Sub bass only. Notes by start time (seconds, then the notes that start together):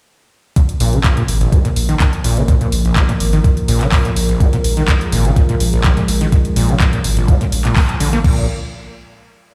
0.80 A#1
1.28 G#1
1.76 A#1
2.24 A#1
2.72 A#1
3.20 G#1
3.68 A#1
4.16 A#1
4.64 A#1
5.12 G#1
5.60 A#1
6.08 A#1
6.56 A#1
7.04 G#1
7.52 A#1
8.01 A#1
8.24 A#1